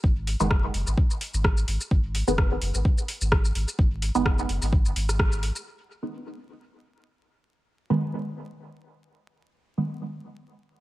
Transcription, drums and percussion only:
0, 0, Header, 1, 2, 480
1, 0, Start_track
1, 0, Key_signature, 5, "minor"
1, 0, Tempo, 468750
1, 39, Time_signature, 4, 2, 24, 8
1, 11061, End_track
2, 0, Start_track
2, 0, Title_t, "Drums"
2, 38, Note_on_c, 9, 36, 118
2, 140, Note_off_c, 9, 36, 0
2, 280, Note_on_c, 9, 46, 77
2, 382, Note_off_c, 9, 46, 0
2, 411, Note_on_c, 9, 82, 47
2, 513, Note_off_c, 9, 82, 0
2, 518, Note_on_c, 9, 36, 112
2, 518, Note_on_c, 9, 37, 76
2, 620, Note_off_c, 9, 36, 0
2, 621, Note_off_c, 9, 37, 0
2, 758, Note_on_c, 9, 46, 63
2, 861, Note_off_c, 9, 46, 0
2, 891, Note_on_c, 9, 82, 47
2, 994, Note_off_c, 9, 82, 0
2, 998, Note_on_c, 9, 36, 114
2, 1100, Note_off_c, 9, 36, 0
2, 1131, Note_on_c, 9, 82, 37
2, 1234, Note_off_c, 9, 82, 0
2, 1239, Note_on_c, 9, 46, 84
2, 1342, Note_off_c, 9, 46, 0
2, 1371, Note_on_c, 9, 82, 49
2, 1474, Note_off_c, 9, 82, 0
2, 1478, Note_on_c, 9, 36, 108
2, 1480, Note_on_c, 9, 37, 80
2, 1580, Note_off_c, 9, 36, 0
2, 1582, Note_off_c, 9, 37, 0
2, 1611, Note_on_c, 9, 82, 39
2, 1714, Note_off_c, 9, 82, 0
2, 1719, Note_on_c, 9, 46, 71
2, 1821, Note_off_c, 9, 46, 0
2, 1851, Note_on_c, 9, 82, 44
2, 1953, Note_off_c, 9, 82, 0
2, 1957, Note_on_c, 9, 36, 113
2, 2060, Note_off_c, 9, 36, 0
2, 2199, Note_on_c, 9, 46, 79
2, 2301, Note_off_c, 9, 46, 0
2, 2331, Note_on_c, 9, 82, 49
2, 2433, Note_off_c, 9, 82, 0
2, 2438, Note_on_c, 9, 36, 112
2, 2438, Note_on_c, 9, 37, 78
2, 2540, Note_off_c, 9, 36, 0
2, 2540, Note_off_c, 9, 37, 0
2, 2678, Note_on_c, 9, 46, 61
2, 2780, Note_off_c, 9, 46, 0
2, 2810, Note_on_c, 9, 82, 49
2, 2913, Note_off_c, 9, 82, 0
2, 2918, Note_on_c, 9, 36, 113
2, 3020, Note_off_c, 9, 36, 0
2, 3050, Note_on_c, 9, 82, 37
2, 3152, Note_off_c, 9, 82, 0
2, 3158, Note_on_c, 9, 46, 79
2, 3260, Note_off_c, 9, 46, 0
2, 3290, Note_on_c, 9, 82, 48
2, 3392, Note_off_c, 9, 82, 0
2, 3398, Note_on_c, 9, 36, 111
2, 3398, Note_on_c, 9, 37, 85
2, 3500, Note_off_c, 9, 37, 0
2, 3501, Note_off_c, 9, 36, 0
2, 3531, Note_on_c, 9, 82, 37
2, 3633, Note_off_c, 9, 82, 0
2, 3639, Note_on_c, 9, 46, 69
2, 3741, Note_off_c, 9, 46, 0
2, 3770, Note_on_c, 9, 82, 46
2, 3873, Note_off_c, 9, 82, 0
2, 3878, Note_on_c, 9, 36, 118
2, 3981, Note_off_c, 9, 36, 0
2, 4119, Note_on_c, 9, 46, 81
2, 4221, Note_off_c, 9, 46, 0
2, 4251, Note_on_c, 9, 82, 48
2, 4354, Note_off_c, 9, 82, 0
2, 4358, Note_on_c, 9, 36, 112
2, 4359, Note_on_c, 9, 37, 84
2, 4461, Note_off_c, 9, 36, 0
2, 4461, Note_off_c, 9, 37, 0
2, 4491, Note_on_c, 9, 82, 27
2, 4593, Note_off_c, 9, 82, 0
2, 4599, Note_on_c, 9, 46, 66
2, 4702, Note_off_c, 9, 46, 0
2, 4732, Note_on_c, 9, 46, 32
2, 4732, Note_on_c, 9, 82, 50
2, 4834, Note_off_c, 9, 46, 0
2, 4834, Note_off_c, 9, 82, 0
2, 4838, Note_on_c, 9, 36, 116
2, 4941, Note_off_c, 9, 36, 0
2, 4972, Note_on_c, 9, 82, 38
2, 5074, Note_off_c, 9, 82, 0
2, 5080, Note_on_c, 9, 46, 79
2, 5183, Note_off_c, 9, 46, 0
2, 5212, Note_on_c, 9, 37, 38
2, 5212, Note_on_c, 9, 82, 50
2, 5315, Note_off_c, 9, 37, 0
2, 5315, Note_off_c, 9, 82, 0
2, 5318, Note_on_c, 9, 36, 112
2, 5320, Note_on_c, 9, 37, 83
2, 5420, Note_off_c, 9, 36, 0
2, 5422, Note_off_c, 9, 37, 0
2, 5451, Note_on_c, 9, 82, 40
2, 5553, Note_off_c, 9, 82, 0
2, 5559, Note_on_c, 9, 46, 68
2, 5662, Note_off_c, 9, 46, 0
2, 5691, Note_on_c, 9, 82, 47
2, 5793, Note_off_c, 9, 82, 0
2, 11061, End_track
0, 0, End_of_file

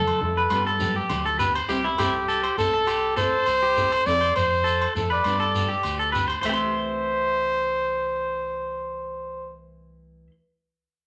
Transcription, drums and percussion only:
0, 0, Header, 1, 3, 480
1, 0, Start_track
1, 0, Key_signature, 0, "major"
1, 0, Tempo, 592300
1, 1367, Time_signature, 4, 2, 24, 8
1, 8967, End_track
2, 0, Start_track
2, 0, Title_t, "Shekere"
2, 405, Note_on_c, 9, 82, 68
2, 486, Note_off_c, 9, 82, 0
2, 648, Note_on_c, 9, 82, 87
2, 729, Note_off_c, 9, 82, 0
2, 893, Note_on_c, 9, 82, 74
2, 974, Note_off_c, 9, 82, 0
2, 1129, Note_on_c, 9, 82, 87
2, 1210, Note_off_c, 9, 82, 0
2, 1261, Note_on_c, 9, 82, 28
2, 1342, Note_off_c, 9, 82, 0
2, 1370, Note_on_c, 9, 82, 74
2, 1451, Note_off_c, 9, 82, 0
2, 1614, Note_on_c, 9, 82, 91
2, 1695, Note_off_c, 9, 82, 0
2, 1852, Note_on_c, 9, 82, 69
2, 1933, Note_off_c, 9, 82, 0
2, 2097, Note_on_c, 9, 82, 86
2, 2178, Note_off_c, 9, 82, 0
2, 2334, Note_on_c, 9, 82, 66
2, 2415, Note_off_c, 9, 82, 0
2, 2569, Note_on_c, 9, 82, 88
2, 2650, Note_off_c, 9, 82, 0
2, 2812, Note_on_c, 9, 82, 61
2, 2893, Note_off_c, 9, 82, 0
2, 3054, Note_on_c, 9, 82, 80
2, 3136, Note_off_c, 9, 82, 0
2, 3183, Note_on_c, 9, 82, 23
2, 3264, Note_off_c, 9, 82, 0
2, 3292, Note_on_c, 9, 82, 63
2, 3373, Note_off_c, 9, 82, 0
2, 3536, Note_on_c, 9, 82, 82
2, 3617, Note_off_c, 9, 82, 0
2, 3667, Note_on_c, 9, 82, 25
2, 3748, Note_off_c, 9, 82, 0
2, 3780, Note_on_c, 9, 82, 65
2, 3861, Note_off_c, 9, 82, 0
2, 4020, Note_on_c, 9, 82, 80
2, 4101, Note_off_c, 9, 82, 0
2, 4154, Note_on_c, 9, 82, 23
2, 4235, Note_off_c, 9, 82, 0
2, 4264, Note_on_c, 9, 82, 68
2, 4345, Note_off_c, 9, 82, 0
2, 4498, Note_on_c, 9, 82, 82
2, 4579, Note_off_c, 9, 82, 0
2, 4632, Note_on_c, 9, 82, 22
2, 4713, Note_off_c, 9, 82, 0
2, 4742, Note_on_c, 9, 82, 65
2, 4823, Note_off_c, 9, 82, 0
2, 4984, Note_on_c, 9, 82, 82
2, 5065, Note_off_c, 9, 82, 0
2, 5118, Note_on_c, 9, 82, 25
2, 5199, Note_off_c, 9, 82, 0
2, 5219, Note_on_c, 9, 82, 68
2, 5301, Note_off_c, 9, 82, 0
2, 8967, End_track
3, 0, Start_track
3, 0, Title_t, "Drums"
3, 59, Note_on_c, 9, 68, 54
3, 141, Note_off_c, 9, 68, 0
3, 173, Note_on_c, 9, 63, 66
3, 254, Note_off_c, 9, 63, 0
3, 407, Note_on_c, 9, 68, 59
3, 410, Note_on_c, 9, 62, 27
3, 488, Note_off_c, 9, 68, 0
3, 491, Note_off_c, 9, 62, 0
3, 652, Note_on_c, 9, 62, 26
3, 652, Note_on_c, 9, 63, 60
3, 733, Note_off_c, 9, 62, 0
3, 733, Note_off_c, 9, 63, 0
3, 887, Note_on_c, 9, 68, 56
3, 891, Note_on_c, 9, 63, 64
3, 968, Note_off_c, 9, 68, 0
3, 972, Note_off_c, 9, 63, 0
3, 1259, Note_on_c, 9, 68, 62
3, 1340, Note_off_c, 9, 68, 0
3, 1606, Note_on_c, 9, 68, 56
3, 1687, Note_off_c, 9, 68, 0
3, 1976, Note_on_c, 9, 68, 52
3, 2057, Note_off_c, 9, 68, 0
3, 2327, Note_on_c, 9, 68, 57
3, 2408, Note_off_c, 9, 68, 0
3, 2806, Note_on_c, 9, 68, 53
3, 2887, Note_off_c, 9, 68, 0
3, 3178, Note_on_c, 9, 68, 60
3, 3260, Note_off_c, 9, 68, 0
3, 3530, Note_on_c, 9, 68, 58
3, 3611, Note_off_c, 9, 68, 0
3, 3902, Note_on_c, 9, 68, 53
3, 3983, Note_off_c, 9, 68, 0
3, 4248, Note_on_c, 9, 68, 59
3, 4329, Note_off_c, 9, 68, 0
3, 4727, Note_on_c, 9, 68, 51
3, 4808, Note_off_c, 9, 68, 0
3, 5103, Note_on_c, 9, 68, 54
3, 5185, Note_off_c, 9, 68, 0
3, 5211, Note_on_c, 9, 68, 87
3, 5292, Note_off_c, 9, 68, 0
3, 8967, End_track
0, 0, End_of_file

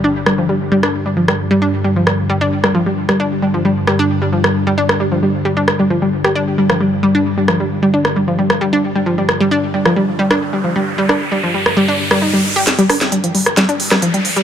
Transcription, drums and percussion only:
0, 0, Header, 1, 2, 480
1, 0, Start_track
1, 0, Tempo, 451128
1, 41, Time_signature, 4, 2, 24, 8
1, 15354, End_track
2, 0, Start_track
2, 0, Title_t, "Drums"
2, 281, Note_on_c, 9, 37, 81
2, 387, Note_off_c, 9, 37, 0
2, 885, Note_on_c, 9, 37, 82
2, 991, Note_off_c, 9, 37, 0
2, 1365, Note_on_c, 9, 37, 88
2, 1472, Note_off_c, 9, 37, 0
2, 2200, Note_on_c, 9, 37, 84
2, 2307, Note_off_c, 9, 37, 0
2, 2805, Note_on_c, 9, 37, 78
2, 2912, Note_off_c, 9, 37, 0
2, 3286, Note_on_c, 9, 37, 85
2, 3392, Note_off_c, 9, 37, 0
2, 4122, Note_on_c, 9, 37, 87
2, 4228, Note_off_c, 9, 37, 0
2, 4725, Note_on_c, 9, 37, 84
2, 4832, Note_off_c, 9, 37, 0
2, 5205, Note_on_c, 9, 37, 91
2, 5312, Note_off_c, 9, 37, 0
2, 6041, Note_on_c, 9, 37, 86
2, 6147, Note_off_c, 9, 37, 0
2, 6644, Note_on_c, 9, 37, 87
2, 6751, Note_off_c, 9, 37, 0
2, 7124, Note_on_c, 9, 37, 90
2, 7231, Note_off_c, 9, 37, 0
2, 7960, Note_on_c, 9, 37, 93
2, 8066, Note_off_c, 9, 37, 0
2, 8563, Note_on_c, 9, 37, 88
2, 8670, Note_off_c, 9, 37, 0
2, 9043, Note_on_c, 9, 37, 88
2, 9150, Note_off_c, 9, 37, 0
2, 9881, Note_on_c, 9, 37, 90
2, 9988, Note_off_c, 9, 37, 0
2, 10486, Note_on_c, 9, 37, 83
2, 10592, Note_off_c, 9, 37, 0
2, 10966, Note_on_c, 9, 37, 96
2, 11072, Note_off_c, 9, 37, 0
2, 11802, Note_on_c, 9, 37, 87
2, 11909, Note_off_c, 9, 37, 0
2, 12406, Note_on_c, 9, 37, 80
2, 12513, Note_off_c, 9, 37, 0
2, 12884, Note_on_c, 9, 37, 91
2, 12991, Note_off_c, 9, 37, 0
2, 13480, Note_on_c, 9, 38, 47
2, 13480, Note_on_c, 9, 42, 89
2, 13587, Note_off_c, 9, 38, 0
2, 13587, Note_off_c, 9, 42, 0
2, 13604, Note_on_c, 9, 42, 53
2, 13711, Note_off_c, 9, 42, 0
2, 13720, Note_on_c, 9, 37, 87
2, 13720, Note_on_c, 9, 46, 107
2, 13827, Note_off_c, 9, 37, 0
2, 13827, Note_off_c, 9, 46, 0
2, 13845, Note_on_c, 9, 38, 42
2, 13845, Note_on_c, 9, 42, 52
2, 13951, Note_off_c, 9, 38, 0
2, 13951, Note_off_c, 9, 42, 0
2, 13961, Note_on_c, 9, 42, 86
2, 14067, Note_off_c, 9, 42, 0
2, 14085, Note_on_c, 9, 42, 55
2, 14191, Note_off_c, 9, 42, 0
2, 14201, Note_on_c, 9, 46, 102
2, 14307, Note_off_c, 9, 46, 0
2, 14325, Note_on_c, 9, 37, 83
2, 14325, Note_on_c, 9, 42, 58
2, 14431, Note_off_c, 9, 37, 0
2, 14431, Note_off_c, 9, 42, 0
2, 14441, Note_on_c, 9, 38, 54
2, 14441, Note_on_c, 9, 42, 99
2, 14548, Note_off_c, 9, 38, 0
2, 14548, Note_off_c, 9, 42, 0
2, 14565, Note_on_c, 9, 42, 52
2, 14671, Note_off_c, 9, 42, 0
2, 14680, Note_on_c, 9, 46, 103
2, 14787, Note_off_c, 9, 46, 0
2, 14804, Note_on_c, 9, 37, 84
2, 14804, Note_on_c, 9, 38, 48
2, 14804, Note_on_c, 9, 42, 53
2, 14911, Note_off_c, 9, 37, 0
2, 14911, Note_off_c, 9, 38, 0
2, 14911, Note_off_c, 9, 42, 0
2, 14920, Note_on_c, 9, 42, 96
2, 15027, Note_off_c, 9, 42, 0
2, 15045, Note_on_c, 9, 42, 53
2, 15151, Note_off_c, 9, 42, 0
2, 15160, Note_on_c, 9, 46, 102
2, 15267, Note_off_c, 9, 46, 0
2, 15285, Note_on_c, 9, 42, 57
2, 15354, Note_off_c, 9, 42, 0
2, 15354, End_track
0, 0, End_of_file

